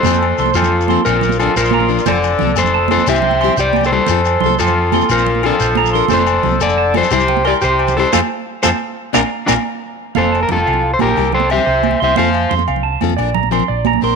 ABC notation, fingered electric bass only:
X:1
M:12/8
L:1/8
Q:3/8=119
K:F
V:1 name="Fingered electric bass" clef=bass
F,,2 C,, F,,3 B,,,3 B,,,3 | F,,,2 C,, F,,,3 C,,3 C,,3 | F,,2 C,, F,,3 B,,,3 B,,,3 | F,,,2 C,, F,,,3 C,,3 C,,3 |
F,, z2 F,, z2 B,,, z B,,, z3 | F,,,2 F,,, C,,2 B,,, C,,3 C,,2 C,, | F,,2 F,, C,,2 F,, B,,,3 B,,,2 B,,, |]